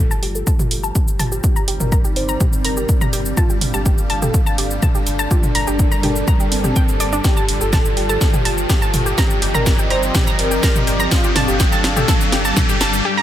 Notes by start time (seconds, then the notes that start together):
Already playing: G2 G3 F4 G4 A4 C5 D5 A5, riser
0.10 G5 A5, shaker
0.23 G1 G4, open hi-hat
0.35 A4, shaker
0.47 A5, kick, shaker
0.59 G4, mid tom, shaker
0.71 G1, open hi-hat
0.83 A5, shaker
0.95 G4, kick, shaker
1.08 shaker
1.19 G1 A5, mid tom, open hi-hat, shaker
1.32 G4, shaker
1.44 C4 D#4 G4 D5, kick, shaker
1.50 G4
1.56 A#5, shaker
1.68 G1 G4, open hi-hat
1.80 G1 A#4, mid tom, shaker
1.92 A#5, kick, shaker
2.00 D5
2.04 G4, shaker
2.16 G1 C5, open hi-hat
2.29 A#5, shaker
2.40 G4, kick, mid tom, shaker
2.53 shaker
2.65 G1 A#4 A#5, open hi-hat
2.77 G4, shaker
2.89 kick, shaker
3.01 A#5, mid tom, shaker
3.13 G1 G4, open hi-hat, shaker
3.25 shaker
3.37 D4 F4 A4 F5 A5, kick, shaker
3.50 G4, shaker
3.61 G1, mid tom, open hi-hat
3.65 A5
3.74 G1 G4 A5, shaker
3.86 G4, kick, shaker
3.98 shaker
4.10 G1 A5, open hi-hat
4.22 G4 A4, mid tom, shaker
4.34 kick, shaker
4.46 A5, shaker
4.58 G1 G4, open hi-hat
4.71 shaker
4.82 A5, kick, mid tom, shaker
4.95 G4, shaker
5.07 G1, open hi-hat, shaker
5.19 A5, shaker
5.31 G3 F4 G4 A#4, kick, shaker
5.43 mid tom, shaker
5.55 G1 A#5, open hi-hat
5.67 G1 D4 G4, shaker
5.79 kick, shaker
5.92 A#5, shaker
6.03 G1 D4 G4, mid tom, open hi-hat
6.16 A5, shaker
6.28 A#5, kick, shaker
6.40 G4, shaker
6.52 G1 C4, open hi-hat
6.64 G4, mid tom, shaker
6.76 G5, kick, shaker
6.88 shaker
7.00 G1 D5, open hi-hat, shaker
7.13 D4, shaker
7.24 F4 G4, kick, snare, shaker
7.37 C5 A5, shaker
7.49 G1, open hi-hat
7.61 G1 G4 A4, shaker
7.73 A5, kick, snare, mid tom, shaker
7.85 shaker
7.97 G1 G4, open hi-hat
8.09 A4 G5 A5, shaker
8.21 kick, snare, shaker
8.34 G4, mid tom, shaker
8.45 G1 A5, open hi-hat
8.58 shaker
8.69 G4, kick, snare, shaker
8.82 A5, shaker
8.94 G1, mid tom, open hi-hat, shaker
9.06 G4, shaker
9.18 C4 G4 D5 D#5 A#5, kick, snare, shaker
9.30 shaker
9.42 G1 G4, open hi-hat
9.54 G1 A#4 A#5, mid tom, shaker
9.62 G4
9.66 kick, snare, shaker
9.79 G4, shaker
9.90 G1 C5 A#5 D6, open hi-hat
10.03 shaker
10.15 G4, kick, snare, mid tom, shaker
10.27 A#5, shaker
10.39 G1 A#4, open hi-hat
10.51 G4, shaker
10.63 A#5, kick, snare, shaker
10.75 mid tom, shaker
10.87 G1 G4, open hi-hat, shaker
11.00 A#5, shaker
11.11 D4 F4 A4 F5, kick, snare, shaker
11.24 G4, shaker
11.36 G1 A5, snare, mid tom, open hi-hat
11.48 G1 G4, shaker
11.60 G4, kick, snare, shaker
11.72 A5, shaker
11.84 G1, snare, open hi-hat
11.96 G4 A4, mid tom, shaker
12.08 A5, kick, snare, shaker
12.21 shaker
12.32 G1 G4, snare, open hi-hat
12.45 A5, shaker
12.57 kick, snare, mid tom, shaker
12.69 G4, shaker
12.81 G1 A5, snare, open hi-hat, shaker
12.93 shaker
13.05 G4
13.17 A#5